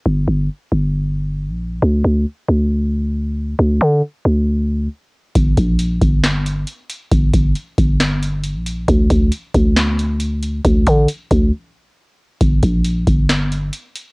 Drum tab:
HH |--------|--------|--------|xxxxxxxx|
CP |--------|--------|--------|----x---|
SD |--------|--------|--------|----o---|
BD |--------|--------|--------|oo-o----|

HH |xxxxxxxx|xxxxxxxx|xxxx----|xxxxxxxx|
CP |----x---|----x---|--------|----x---|
SD |----o---|----o---|--------|----o---|
BD |oo-o----|oo-o----|oo-o----|oo-o----|